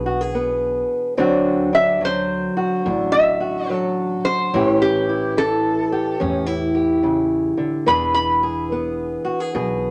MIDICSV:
0, 0, Header, 1, 4, 480
1, 0, Start_track
1, 0, Tempo, 835655
1, 682, Time_signature, 4, 2, 24, 8
1, 5690, End_track
2, 0, Start_track
2, 0, Title_t, "Resonator guitar played with a steel bar"
2, 0, Program_c, 0, 25
2, 1003, Note_on_c, 0, 76, 97
2, 1159, Note_off_c, 0, 76, 0
2, 1177, Note_on_c, 0, 72, 90
2, 1792, Note_on_c, 0, 76, 101
2, 1793, Note_off_c, 0, 72, 0
2, 2129, Note_off_c, 0, 76, 0
2, 2129, Note_on_c, 0, 69, 88
2, 2438, Note_off_c, 0, 69, 0
2, 2440, Note_on_c, 0, 72, 98
2, 2754, Note_off_c, 0, 72, 0
2, 2767, Note_on_c, 0, 67, 91
2, 3077, Note_off_c, 0, 67, 0
2, 3090, Note_on_c, 0, 69, 98
2, 3553, Note_off_c, 0, 69, 0
2, 4524, Note_on_c, 0, 83, 94
2, 4671, Note_off_c, 0, 83, 0
2, 4678, Note_on_c, 0, 83, 95
2, 4937, Note_off_c, 0, 83, 0
2, 5690, End_track
3, 0, Start_track
3, 0, Title_t, "Steel-string acoustic guitar"
3, 0, Program_c, 1, 25
3, 0, Note_on_c, 1, 47, 64
3, 0, Note_on_c, 1, 52, 72
3, 0, Note_on_c, 1, 59, 58
3, 0, Note_on_c, 1, 62, 55
3, 34, Note_on_c, 1, 66, 60
3, 119, Note_off_c, 1, 66, 0
3, 119, Note_on_c, 1, 68, 49
3, 192, Note_off_c, 1, 59, 0
3, 199, Note_on_c, 1, 59, 65
3, 661, Note_off_c, 1, 59, 0
3, 662, Note_off_c, 1, 62, 0
3, 672, Note_off_c, 1, 47, 0
3, 674, Note_off_c, 1, 52, 0
3, 674, Note_on_c, 1, 50, 76
3, 676, Note_on_c, 1, 54, 63
3, 678, Note_on_c, 1, 60, 67
3, 683, Note_on_c, 1, 62, 65
3, 684, Note_off_c, 1, 68, 0
3, 690, Note_on_c, 1, 66, 72
3, 986, Note_off_c, 1, 62, 0
3, 993, Note_on_c, 1, 62, 63
3, 1147, Note_off_c, 1, 54, 0
3, 1154, Note_on_c, 1, 54, 61
3, 1468, Note_off_c, 1, 66, 0
3, 1475, Note_on_c, 1, 66, 67
3, 1635, Note_off_c, 1, 62, 0
3, 1640, Note_on_c, 1, 45, 62
3, 1644, Note_on_c, 1, 62, 60
3, 1948, Note_off_c, 1, 66, 0
3, 1955, Note_on_c, 1, 66, 59
3, 2117, Note_off_c, 1, 54, 0
3, 2123, Note_on_c, 1, 54, 64
3, 2582, Note_off_c, 1, 50, 0
3, 2584, Note_off_c, 1, 45, 0
3, 2584, Note_off_c, 1, 60, 0
3, 2584, Note_off_c, 1, 62, 0
3, 2585, Note_off_c, 1, 54, 0
3, 2605, Note_off_c, 1, 66, 0
3, 2607, Note_on_c, 1, 45, 84
3, 2609, Note_on_c, 1, 52, 67
3, 2612, Note_on_c, 1, 61, 65
3, 2615, Note_on_c, 1, 64, 65
3, 2618, Note_on_c, 1, 67, 74
3, 2922, Note_off_c, 1, 64, 0
3, 2924, Note_on_c, 1, 64, 58
3, 3083, Note_off_c, 1, 52, 0
3, 3085, Note_on_c, 1, 52, 64
3, 3395, Note_off_c, 1, 67, 0
3, 3402, Note_on_c, 1, 67, 75
3, 3553, Note_off_c, 1, 45, 0
3, 3554, Note_off_c, 1, 61, 0
3, 3559, Note_off_c, 1, 64, 0
3, 3560, Note_on_c, 1, 45, 67
3, 3561, Note_on_c, 1, 61, 64
3, 3713, Note_off_c, 1, 61, 0
3, 3713, Note_on_c, 1, 64, 48
3, 3868, Note_off_c, 1, 67, 0
3, 3875, Note_on_c, 1, 67, 59
3, 4038, Note_on_c, 1, 49, 62
3, 4348, Note_off_c, 1, 49, 0
3, 4350, Note_on_c, 1, 50, 61
3, 4501, Note_off_c, 1, 45, 0
3, 4503, Note_off_c, 1, 67, 0
3, 4515, Note_off_c, 1, 52, 0
3, 4517, Note_on_c, 1, 52, 87
3, 4519, Note_off_c, 1, 64, 0
3, 4519, Note_on_c, 1, 59, 63
3, 4521, Note_off_c, 1, 50, 0
3, 4525, Note_on_c, 1, 62, 59
3, 4531, Note_on_c, 1, 68, 70
3, 4835, Note_off_c, 1, 68, 0
3, 4842, Note_on_c, 1, 68, 75
3, 5001, Note_off_c, 1, 59, 0
3, 5009, Note_on_c, 1, 59, 67
3, 5309, Note_off_c, 1, 68, 0
3, 5311, Note_on_c, 1, 66, 71
3, 5400, Note_off_c, 1, 66, 0
3, 5400, Note_on_c, 1, 68, 55
3, 5480, Note_off_c, 1, 68, 0
3, 5484, Note_on_c, 1, 47, 68
3, 5487, Note_on_c, 1, 68, 68
3, 5690, Note_off_c, 1, 47, 0
3, 5690, Note_off_c, 1, 52, 0
3, 5690, Note_off_c, 1, 59, 0
3, 5690, Note_off_c, 1, 62, 0
3, 5690, Note_off_c, 1, 68, 0
3, 5690, End_track
4, 0, Start_track
4, 0, Title_t, "Upright bass"
4, 0, Program_c, 2, 32
4, 0, Note_on_c, 2, 35, 102
4, 461, Note_off_c, 2, 35, 0
4, 683, Note_on_c, 2, 38, 90
4, 1423, Note_off_c, 2, 38, 0
4, 1642, Note_on_c, 2, 33, 105
4, 2381, Note_off_c, 2, 33, 0
4, 2605, Note_on_c, 2, 33, 104
4, 3343, Note_off_c, 2, 33, 0
4, 3567, Note_on_c, 2, 40, 108
4, 4302, Note_off_c, 2, 40, 0
4, 4522, Note_on_c, 2, 28, 100
4, 5259, Note_off_c, 2, 28, 0
4, 5484, Note_on_c, 2, 35, 106
4, 5690, Note_off_c, 2, 35, 0
4, 5690, End_track
0, 0, End_of_file